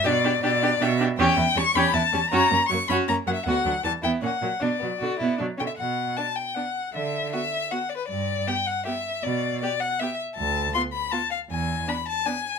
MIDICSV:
0, 0, Header, 1, 5, 480
1, 0, Start_track
1, 0, Key_signature, 2, "minor"
1, 0, Tempo, 377596
1, 72, Time_signature, 3, 2, 24, 8
1, 4872, Tempo, 387097
1, 10632, Tempo, 377596
1, 15858, End_track
2, 0, Start_track
2, 0, Title_t, "Violin"
2, 0, Program_c, 0, 40
2, 72, Note_on_c, 0, 74, 88
2, 549, Note_off_c, 0, 74, 0
2, 557, Note_on_c, 0, 74, 81
2, 1044, Note_on_c, 0, 76, 75
2, 1063, Note_off_c, 0, 74, 0
2, 1276, Note_off_c, 0, 76, 0
2, 1517, Note_on_c, 0, 79, 82
2, 1996, Note_on_c, 0, 85, 86
2, 2015, Note_off_c, 0, 79, 0
2, 2225, Note_on_c, 0, 83, 84
2, 2244, Note_off_c, 0, 85, 0
2, 2462, Note_on_c, 0, 81, 78
2, 2481, Note_off_c, 0, 83, 0
2, 2921, Note_off_c, 0, 81, 0
2, 2929, Note_on_c, 0, 82, 85
2, 3409, Note_off_c, 0, 82, 0
2, 3417, Note_on_c, 0, 85, 82
2, 3658, Note_off_c, 0, 85, 0
2, 3672, Note_on_c, 0, 83, 75
2, 3767, Note_off_c, 0, 83, 0
2, 3917, Note_on_c, 0, 82, 73
2, 4011, Note_off_c, 0, 82, 0
2, 4162, Note_on_c, 0, 78, 66
2, 4192, Note_off_c, 0, 78, 0
2, 4243, Note_on_c, 0, 76, 62
2, 4391, Note_off_c, 0, 76, 0
2, 4398, Note_on_c, 0, 78, 70
2, 4867, Note_off_c, 0, 78, 0
2, 4887, Note_on_c, 0, 81, 70
2, 4979, Note_off_c, 0, 81, 0
2, 5123, Note_on_c, 0, 79, 54
2, 5216, Note_off_c, 0, 79, 0
2, 5364, Note_on_c, 0, 78, 57
2, 5846, Note_on_c, 0, 74, 56
2, 5865, Note_off_c, 0, 78, 0
2, 6816, Note_off_c, 0, 74, 0
2, 7062, Note_on_c, 0, 79, 53
2, 7093, Note_off_c, 0, 79, 0
2, 7150, Note_on_c, 0, 76, 51
2, 7212, Note_off_c, 0, 76, 0
2, 7282, Note_on_c, 0, 78, 55
2, 7767, Note_on_c, 0, 81, 66
2, 7786, Note_off_c, 0, 78, 0
2, 8004, Note_on_c, 0, 79, 54
2, 8022, Note_off_c, 0, 81, 0
2, 8232, Note_on_c, 0, 78, 55
2, 8251, Note_off_c, 0, 79, 0
2, 8718, Note_off_c, 0, 78, 0
2, 8733, Note_on_c, 0, 76, 58
2, 9192, Note_off_c, 0, 76, 0
2, 9200, Note_on_c, 0, 76, 65
2, 9680, Note_on_c, 0, 78, 55
2, 9699, Note_off_c, 0, 76, 0
2, 9906, Note_on_c, 0, 74, 57
2, 9925, Note_off_c, 0, 78, 0
2, 9992, Note_off_c, 0, 74, 0
2, 10001, Note_on_c, 0, 71, 52
2, 10135, Note_off_c, 0, 71, 0
2, 10142, Note_on_c, 0, 74, 63
2, 10632, Note_on_c, 0, 79, 65
2, 10651, Note_off_c, 0, 74, 0
2, 10872, Note_on_c, 0, 78, 67
2, 10891, Note_off_c, 0, 79, 0
2, 11111, Note_off_c, 0, 78, 0
2, 11119, Note_on_c, 0, 76, 63
2, 11592, Note_on_c, 0, 74, 65
2, 11612, Note_off_c, 0, 76, 0
2, 12065, Note_off_c, 0, 74, 0
2, 12073, Note_on_c, 0, 74, 65
2, 12313, Note_on_c, 0, 78, 69
2, 12332, Note_off_c, 0, 74, 0
2, 12563, Note_on_c, 0, 76, 61
2, 12582, Note_off_c, 0, 78, 0
2, 12804, Note_off_c, 0, 76, 0
2, 13024, Note_on_c, 0, 81, 74
2, 13476, Note_off_c, 0, 81, 0
2, 13510, Note_on_c, 0, 84, 74
2, 13608, Note_off_c, 0, 84, 0
2, 13749, Note_on_c, 0, 83, 65
2, 13985, Note_on_c, 0, 81, 70
2, 14004, Note_off_c, 0, 83, 0
2, 14224, Note_off_c, 0, 81, 0
2, 14232, Note_on_c, 0, 77, 60
2, 14330, Note_off_c, 0, 77, 0
2, 14499, Note_on_c, 0, 80, 72
2, 14967, Note_on_c, 0, 83, 68
2, 14987, Note_off_c, 0, 80, 0
2, 15203, Note_off_c, 0, 83, 0
2, 15215, Note_on_c, 0, 81, 68
2, 15435, Note_on_c, 0, 80, 67
2, 15454, Note_off_c, 0, 81, 0
2, 15858, Note_off_c, 0, 80, 0
2, 15858, End_track
3, 0, Start_track
3, 0, Title_t, "Violin"
3, 0, Program_c, 1, 40
3, 49, Note_on_c, 1, 67, 56
3, 149, Note_off_c, 1, 67, 0
3, 308, Note_on_c, 1, 67, 58
3, 404, Note_off_c, 1, 67, 0
3, 546, Note_on_c, 1, 67, 61
3, 643, Note_off_c, 1, 67, 0
3, 796, Note_on_c, 1, 67, 55
3, 890, Note_off_c, 1, 67, 0
3, 1036, Note_on_c, 1, 67, 49
3, 1130, Note_off_c, 1, 67, 0
3, 1278, Note_on_c, 1, 67, 56
3, 1372, Note_off_c, 1, 67, 0
3, 1512, Note_on_c, 1, 67, 67
3, 1732, Note_off_c, 1, 67, 0
3, 1752, Note_on_c, 1, 64, 46
3, 1847, Note_off_c, 1, 64, 0
3, 1993, Note_on_c, 1, 61, 52
3, 2088, Note_off_c, 1, 61, 0
3, 2238, Note_on_c, 1, 67, 68
3, 2454, Note_off_c, 1, 67, 0
3, 2474, Note_on_c, 1, 64, 43
3, 2568, Note_off_c, 1, 64, 0
3, 2711, Note_on_c, 1, 61, 60
3, 2806, Note_off_c, 1, 61, 0
3, 2949, Note_on_c, 1, 66, 65
3, 3171, Note_off_c, 1, 66, 0
3, 3219, Note_on_c, 1, 61, 52
3, 3309, Note_off_c, 1, 61, 0
3, 3462, Note_on_c, 1, 58, 43
3, 3552, Note_off_c, 1, 58, 0
3, 3696, Note_on_c, 1, 66, 66
3, 3907, Note_off_c, 1, 66, 0
3, 3931, Note_on_c, 1, 61, 43
3, 4023, Note_off_c, 1, 61, 0
3, 4175, Note_on_c, 1, 58, 44
3, 4266, Note_off_c, 1, 58, 0
3, 4414, Note_on_c, 1, 66, 55
3, 4628, Note_off_c, 1, 66, 0
3, 4654, Note_on_c, 1, 62, 41
3, 4746, Note_off_c, 1, 62, 0
3, 4891, Note_on_c, 1, 55, 43
3, 4982, Note_off_c, 1, 55, 0
3, 5102, Note_on_c, 1, 64, 46
3, 5329, Note_off_c, 1, 64, 0
3, 5352, Note_on_c, 1, 61, 35
3, 5449, Note_off_c, 1, 61, 0
3, 5593, Note_on_c, 1, 58, 43
3, 5691, Note_off_c, 1, 58, 0
3, 5817, Note_on_c, 1, 62, 44
3, 6054, Note_off_c, 1, 62, 0
3, 6061, Note_on_c, 1, 59, 33
3, 6161, Note_off_c, 1, 59, 0
3, 6299, Note_on_c, 1, 66, 57
3, 6537, Note_off_c, 1, 66, 0
3, 6559, Note_on_c, 1, 64, 49
3, 6781, Note_off_c, 1, 64, 0
3, 6789, Note_on_c, 1, 62, 43
3, 6888, Note_off_c, 1, 62, 0
3, 7034, Note_on_c, 1, 61, 40
3, 7133, Note_off_c, 1, 61, 0
3, 7780, Note_on_c, 1, 62, 39
3, 7879, Note_off_c, 1, 62, 0
3, 8255, Note_on_c, 1, 62, 32
3, 8355, Note_off_c, 1, 62, 0
3, 9206, Note_on_c, 1, 66, 43
3, 9306, Note_off_c, 1, 66, 0
3, 9680, Note_on_c, 1, 66, 35
3, 9779, Note_off_c, 1, 66, 0
3, 10624, Note_on_c, 1, 67, 42
3, 10726, Note_off_c, 1, 67, 0
3, 11105, Note_on_c, 1, 67, 38
3, 11207, Note_off_c, 1, 67, 0
3, 12097, Note_on_c, 1, 67, 46
3, 12199, Note_off_c, 1, 67, 0
3, 12590, Note_on_c, 1, 67, 42
3, 12691, Note_off_c, 1, 67, 0
3, 13518, Note_on_c, 1, 65, 49
3, 13620, Note_off_c, 1, 65, 0
3, 13995, Note_on_c, 1, 65, 42
3, 14096, Note_off_c, 1, 65, 0
3, 14955, Note_on_c, 1, 62, 45
3, 15057, Note_off_c, 1, 62, 0
3, 15438, Note_on_c, 1, 62, 38
3, 15539, Note_off_c, 1, 62, 0
3, 15858, End_track
4, 0, Start_track
4, 0, Title_t, "Viola"
4, 0, Program_c, 2, 41
4, 73, Note_on_c, 2, 62, 59
4, 168, Note_off_c, 2, 62, 0
4, 308, Note_on_c, 2, 62, 53
4, 403, Note_off_c, 2, 62, 0
4, 550, Note_on_c, 2, 62, 53
4, 645, Note_off_c, 2, 62, 0
4, 792, Note_on_c, 2, 62, 54
4, 888, Note_off_c, 2, 62, 0
4, 1020, Note_on_c, 2, 62, 54
4, 1117, Note_off_c, 2, 62, 0
4, 1268, Note_on_c, 2, 62, 45
4, 1364, Note_off_c, 2, 62, 0
4, 1507, Note_on_c, 2, 61, 74
4, 1730, Note_off_c, 2, 61, 0
4, 1743, Note_on_c, 2, 59, 50
4, 1840, Note_off_c, 2, 59, 0
4, 1990, Note_on_c, 2, 55, 53
4, 2085, Note_off_c, 2, 55, 0
4, 2226, Note_on_c, 2, 61, 62
4, 2448, Note_off_c, 2, 61, 0
4, 2461, Note_on_c, 2, 59, 55
4, 2558, Note_off_c, 2, 59, 0
4, 2701, Note_on_c, 2, 55, 43
4, 2798, Note_off_c, 2, 55, 0
4, 2944, Note_on_c, 2, 61, 58
4, 3168, Note_off_c, 2, 61, 0
4, 3190, Note_on_c, 2, 58, 40
4, 3286, Note_off_c, 2, 58, 0
4, 3423, Note_on_c, 2, 54, 44
4, 3520, Note_off_c, 2, 54, 0
4, 3669, Note_on_c, 2, 61, 54
4, 3892, Note_off_c, 2, 61, 0
4, 3924, Note_on_c, 2, 58, 45
4, 4018, Note_off_c, 2, 58, 0
4, 4157, Note_on_c, 2, 54, 42
4, 4252, Note_off_c, 2, 54, 0
4, 4394, Note_on_c, 2, 59, 51
4, 4616, Note_off_c, 2, 59, 0
4, 4641, Note_on_c, 2, 54, 38
4, 4736, Note_off_c, 2, 54, 0
4, 4877, Note_on_c, 2, 52, 41
4, 4971, Note_off_c, 2, 52, 0
4, 5118, Note_on_c, 2, 59, 53
4, 5337, Note_off_c, 2, 59, 0
4, 5361, Note_on_c, 2, 58, 41
4, 5456, Note_off_c, 2, 58, 0
4, 5604, Note_on_c, 2, 54, 35
4, 5700, Note_off_c, 2, 54, 0
4, 5846, Note_on_c, 2, 59, 41
4, 6069, Note_off_c, 2, 59, 0
4, 6105, Note_on_c, 2, 54, 33
4, 6197, Note_off_c, 2, 54, 0
4, 6352, Note_on_c, 2, 50, 35
4, 6444, Note_off_c, 2, 50, 0
4, 6591, Note_on_c, 2, 59, 47
4, 6807, Note_off_c, 2, 59, 0
4, 6825, Note_on_c, 2, 54, 32
4, 6920, Note_off_c, 2, 54, 0
4, 7059, Note_on_c, 2, 50, 36
4, 7155, Note_off_c, 2, 50, 0
4, 7779, Note_on_c, 2, 59, 37
4, 7879, Note_off_c, 2, 59, 0
4, 8251, Note_on_c, 2, 59, 35
4, 8351, Note_off_c, 2, 59, 0
4, 9212, Note_on_c, 2, 59, 39
4, 9311, Note_off_c, 2, 59, 0
4, 9687, Note_on_c, 2, 59, 39
4, 9786, Note_off_c, 2, 59, 0
4, 10625, Note_on_c, 2, 59, 40
4, 10726, Note_off_c, 2, 59, 0
4, 11122, Note_on_c, 2, 59, 40
4, 11224, Note_off_c, 2, 59, 0
4, 12085, Note_on_c, 2, 59, 45
4, 12186, Note_off_c, 2, 59, 0
4, 12570, Note_on_c, 2, 59, 43
4, 12672, Note_off_c, 2, 59, 0
4, 13530, Note_on_c, 2, 59, 45
4, 13631, Note_off_c, 2, 59, 0
4, 13986, Note_on_c, 2, 59, 43
4, 14087, Note_off_c, 2, 59, 0
4, 14957, Note_on_c, 2, 59, 45
4, 15058, Note_off_c, 2, 59, 0
4, 15453, Note_on_c, 2, 59, 42
4, 15555, Note_off_c, 2, 59, 0
4, 15858, End_track
5, 0, Start_track
5, 0, Title_t, "Cello"
5, 0, Program_c, 3, 42
5, 67, Note_on_c, 3, 47, 66
5, 490, Note_off_c, 3, 47, 0
5, 544, Note_on_c, 3, 47, 65
5, 970, Note_off_c, 3, 47, 0
5, 1024, Note_on_c, 3, 47, 69
5, 1449, Note_off_c, 3, 47, 0
5, 1510, Note_on_c, 3, 40, 75
5, 1605, Note_off_c, 3, 40, 0
5, 1738, Note_on_c, 3, 40, 54
5, 1836, Note_off_c, 3, 40, 0
5, 1974, Note_on_c, 3, 40, 51
5, 2072, Note_off_c, 3, 40, 0
5, 2223, Note_on_c, 3, 40, 70
5, 2319, Note_off_c, 3, 40, 0
5, 2459, Note_on_c, 3, 40, 48
5, 2556, Note_off_c, 3, 40, 0
5, 2710, Note_on_c, 3, 40, 42
5, 2805, Note_off_c, 3, 40, 0
5, 2948, Note_on_c, 3, 42, 70
5, 3044, Note_off_c, 3, 42, 0
5, 3192, Note_on_c, 3, 42, 45
5, 3288, Note_off_c, 3, 42, 0
5, 3441, Note_on_c, 3, 42, 47
5, 3535, Note_off_c, 3, 42, 0
5, 3669, Note_on_c, 3, 42, 65
5, 3765, Note_off_c, 3, 42, 0
5, 3924, Note_on_c, 3, 42, 43
5, 4017, Note_off_c, 3, 42, 0
5, 4152, Note_on_c, 3, 42, 42
5, 4248, Note_off_c, 3, 42, 0
5, 4404, Note_on_c, 3, 38, 60
5, 4498, Note_off_c, 3, 38, 0
5, 4647, Note_on_c, 3, 38, 42
5, 4740, Note_off_c, 3, 38, 0
5, 4882, Note_on_c, 3, 40, 39
5, 4975, Note_off_c, 3, 40, 0
5, 5113, Note_on_c, 3, 40, 55
5, 5209, Note_off_c, 3, 40, 0
5, 5360, Note_on_c, 3, 46, 41
5, 5455, Note_off_c, 3, 46, 0
5, 5599, Note_on_c, 3, 46, 38
5, 5695, Note_off_c, 3, 46, 0
5, 5839, Note_on_c, 3, 47, 54
5, 5937, Note_off_c, 3, 47, 0
5, 6092, Note_on_c, 3, 47, 35
5, 6187, Note_off_c, 3, 47, 0
5, 6333, Note_on_c, 3, 47, 34
5, 6428, Note_off_c, 3, 47, 0
5, 6566, Note_on_c, 3, 47, 46
5, 6664, Note_off_c, 3, 47, 0
5, 6814, Note_on_c, 3, 47, 38
5, 6911, Note_off_c, 3, 47, 0
5, 7066, Note_on_c, 3, 47, 32
5, 7161, Note_off_c, 3, 47, 0
5, 7300, Note_on_c, 3, 47, 45
5, 7699, Note_off_c, 3, 47, 0
5, 8716, Note_on_c, 3, 50, 44
5, 9120, Note_off_c, 3, 50, 0
5, 10156, Note_on_c, 3, 43, 53
5, 10553, Note_off_c, 3, 43, 0
5, 11600, Note_on_c, 3, 47, 61
5, 12005, Note_off_c, 3, 47, 0
5, 13044, Note_on_c, 3, 38, 58
5, 13441, Note_off_c, 3, 38, 0
5, 14471, Note_on_c, 3, 40, 53
5, 14877, Note_off_c, 3, 40, 0
5, 15858, End_track
0, 0, End_of_file